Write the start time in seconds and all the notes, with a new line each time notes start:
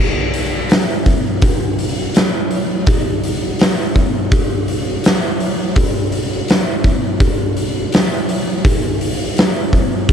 0.34 open hi-hat
0.70 snare, open hi-hat
1.06 kick, open hi-hat
1.42 kick, open hi-hat
1.79 open hi-hat
2.14 snare, open hi-hat
2.51 open hi-hat
2.87 kick, open hi-hat
3.24 open hi-hat
3.59 snare, open hi-hat
3.96 kick, open hi-hat
4.32 kick, open hi-hat
4.68 open hi-hat
5.04 snare, open hi-hat
5.40 open hi-hat
5.76 kick, open hi-hat
6.12 open hi-hat
6.48 snare, open hi-hat
6.84 kick, open hi-hat
7.20 kick, open hi-hat
7.57 open hi-hat
7.92 snare, open hi-hat
8.29 open hi-hat
8.65 kick, open hi-hat
9.01 open hi-hat
9.37 snare, open hi-hat
9.73 kick, open hi-hat
10.09 kick, open hi-hat